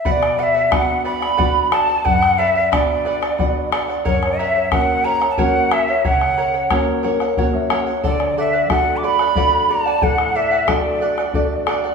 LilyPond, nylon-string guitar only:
\new Staff \with { instrumentName = "Nylon-string guitar" } { \time 3/4 \key fis \phrygian \tempo 4 = 90 << { r2. | r2. | r2. | r4. ais'8 cis''16 e''16 fis''8 |
r2. | r2. | } \\ { b,4 <b d' fis'>4 <b d' fis'>4 | fis,4 <b d' fis'>4 <b d' fis'>4 | fis,4 <ais cis' fis'>4 <ais cis' fis'>4 | cis4 <ais cis' fis'>4 <ais cis' fis'>4 |
d4 <a d' fis'>4 <a d' fis'>4 | a,4 <a d' fis'>4 <a d' fis'>4 | } >> }